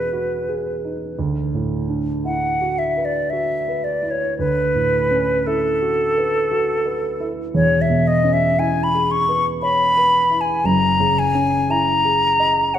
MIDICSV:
0, 0, Header, 1, 3, 480
1, 0, Start_track
1, 0, Tempo, 1063830
1, 533, Time_signature, 3, 2, 24, 8
1, 2460, Tempo, 1041667
1, 5840, End_track
2, 0, Start_track
2, 0, Title_t, "Flute"
2, 0, Program_c, 0, 73
2, 0, Note_on_c, 0, 71, 74
2, 532, Note_off_c, 0, 71, 0
2, 1017, Note_on_c, 0, 78, 82
2, 1256, Note_on_c, 0, 76, 76
2, 1263, Note_off_c, 0, 78, 0
2, 1376, Note_on_c, 0, 74, 76
2, 1383, Note_off_c, 0, 76, 0
2, 1490, Note_on_c, 0, 76, 80
2, 1496, Note_off_c, 0, 74, 0
2, 1733, Note_on_c, 0, 74, 70
2, 1740, Note_off_c, 0, 76, 0
2, 1853, Note_on_c, 0, 73, 74
2, 1860, Note_off_c, 0, 74, 0
2, 1974, Note_off_c, 0, 73, 0
2, 1980, Note_on_c, 0, 71, 92
2, 2466, Note_on_c, 0, 69, 95
2, 2473, Note_off_c, 0, 71, 0
2, 3315, Note_off_c, 0, 69, 0
2, 3428, Note_on_c, 0, 73, 93
2, 3549, Note_on_c, 0, 76, 86
2, 3556, Note_off_c, 0, 73, 0
2, 3668, Note_on_c, 0, 75, 104
2, 3675, Note_off_c, 0, 76, 0
2, 3787, Note_on_c, 0, 76, 91
2, 3793, Note_off_c, 0, 75, 0
2, 3907, Note_on_c, 0, 80, 98
2, 3913, Note_off_c, 0, 76, 0
2, 4019, Note_on_c, 0, 83, 91
2, 4026, Note_off_c, 0, 80, 0
2, 4147, Note_on_c, 0, 85, 101
2, 4154, Note_off_c, 0, 83, 0
2, 4304, Note_off_c, 0, 85, 0
2, 4381, Note_on_c, 0, 83, 118
2, 4744, Note_on_c, 0, 80, 95
2, 4751, Note_off_c, 0, 83, 0
2, 4859, Note_on_c, 0, 82, 106
2, 4866, Note_off_c, 0, 80, 0
2, 5103, Note_on_c, 0, 80, 112
2, 5110, Note_off_c, 0, 82, 0
2, 5343, Note_on_c, 0, 82, 111
2, 5350, Note_off_c, 0, 80, 0
2, 5819, Note_on_c, 0, 78, 95
2, 5826, Note_off_c, 0, 82, 0
2, 5840, Note_off_c, 0, 78, 0
2, 5840, End_track
3, 0, Start_track
3, 0, Title_t, "Grand piano"
3, 0, Program_c, 1, 0
3, 0, Control_c, 1, 64, 127
3, 0, Note_on_c, 1, 28, 50
3, 0, Note_on_c, 1, 40, 51
3, 0, Note_on_c, 1, 47, 43
3, 0, Note_on_c, 1, 61, 45
3, 0, Note_on_c, 1, 63, 45
3, 0, Note_on_c, 1, 66, 41
3, 0, Note_on_c, 1, 68, 41
3, 58, Note_off_c, 1, 66, 0
3, 58, Note_on_c, 1, 66, 45
3, 155, Note_off_c, 1, 68, 0
3, 220, Note_on_c, 1, 68, 47
3, 312, Note_off_c, 1, 66, 0
3, 381, Note_off_c, 1, 63, 0
3, 381, Note_on_c, 1, 63, 40
3, 471, Note_off_c, 1, 68, 0
3, 512, Note_off_c, 1, 28, 0
3, 516, Note_off_c, 1, 40, 0
3, 535, Note_off_c, 1, 63, 0
3, 535, Note_on_c, 1, 38, 59
3, 540, Control_c, 1, 64, 0
3, 544, Note_off_c, 1, 47, 0
3, 544, Note_off_c, 1, 61, 0
3, 600, Control_c, 1, 64, 127
3, 695, Note_on_c, 1, 45, 45
3, 850, Note_on_c, 1, 62, 43
3, 951, Note_off_c, 1, 45, 0
3, 1015, Note_on_c, 1, 64, 49
3, 1110, Note_off_c, 1, 62, 0
3, 1179, Note_on_c, 1, 66, 48
3, 1272, Note_off_c, 1, 64, 0
3, 1340, Note_on_c, 1, 71, 45
3, 1434, Note_off_c, 1, 66, 0
3, 1501, Note_on_c, 1, 66, 48
3, 1594, Note_off_c, 1, 71, 0
3, 1661, Note_on_c, 1, 71, 50
3, 1754, Note_off_c, 1, 66, 0
3, 1817, Note_on_c, 1, 64, 44
3, 1913, Note_off_c, 1, 71, 0
3, 1958, Note_off_c, 1, 38, 0
3, 1976, Note_off_c, 1, 64, 0
3, 1981, Note_on_c, 1, 38, 55
3, 1983, Control_c, 1, 64, 0
3, 2061, Control_c, 1, 64, 127
3, 2143, Note_on_c, 1, 45, 46
3, 2304, Note_on_c, 1, 61, 48
3, 2400, Note_off_c, 1, 45, 0
3, 2467, Note_on_c, 1, 64, 56
3, 2562, Note_off_c, 1, 61, 0
3, 2630, Note_on_c, 1, 66, 53
3, 2724, Note_off_c, 1, 64, 0
3, 2793, Note_on_c, 1, 71, 54
3, 2883, Note_off_c, 1, 66, 0
3, 2949, Note_on_c, 1, 66, 53
3, 3043, Note_off_c, 1, 71, 0
3, 3106, Note_on_c, 1, 71, 58
3, 3201, Note_off_c, 1, 66, 0
3, 3266, Note_on_c, 1, 64, 54
3, 3360, Note_off_c, 1, 71, 0
3, 3407, Note_off_c, 1, 38, 0
3, 3420, Note_on_c, 1, 28, 58
3, 3423, Note_on_c, 1, 40, 63
3, 3425, Note_off_c, 1, 64, 0
3, 3429, Control_c, 1, 64, 0
3, 3507, Control_c, 1, 64, 127
3, 3586, Note_on_c, 1, 47, 54
3, 3744, Note_on_c, 1, 61, 53
3, 3842, Note_off_c, 1, 47, 0
3, 3906, Note_on_c, 1, 64, 59
3, 4002, Note_off_c, 1, 61, 0
3, 4070, Note_on_c, 1, 68, 53
3, 4163, Note_off_c, 1, 64, 0
3, 4226, Note_on_c, 1, 71, 54
3, 4325, Note_off_c, 1, 68, 0
3, 4382, Note_on_c, 1, 73, 60
3, 4482, Note_off_c, 1, 71, 0
3, 4542, Note_on_c, 1, 71, 55
3, 4640, Note_off_c, 1, 73, 0
3, 4697, Note_on_c, 1, 64, 49
3, 4799, Note_off_c, 1, 71, 0
3, 4846, Note_off_c, 1, 28, 0
3, 4847, Note_off_c, 1, 40, 0
3, 4852, Note_on_c, 1, 30, 59
3, 4855, Note_on_c, 1, 42, 65
3, 4861, Note_off_c, 1, 64, 0
3, 4872, Control_c, 1, 64, 0
3, 4941, Control_c, 1, 64, 127
3, 5016, Note_on_c, 1, 49, 60
3, 5177, Note_on_c, 1, 61, 55
3, 5274, Note_off_c, 1, 49, 0
3, 5338, Note_on_c, 1, 64, 64
3, 5434, Note_off_c, 1, 61, 0
3, 5499, Note_on_c, 1, 68, 56
3, 5595, Note_off_c, 1, 64, 0
3, 5659, Note_on_c, 1, 75, 58
3, 5757, Note_off_c, 1, 68, 0
3, 5824, Note_on_c, 1, 73, 66
3, 5840, Note_off_c, 1, 30, 0
3, 5840, Note_off_c, 1, 42, 0
3, 5840, Note_off_c, 1, 73, 0
3, 5840, Note_off_c, 1, 75, 0
3, 5840, End_track
0, 0, End_of_file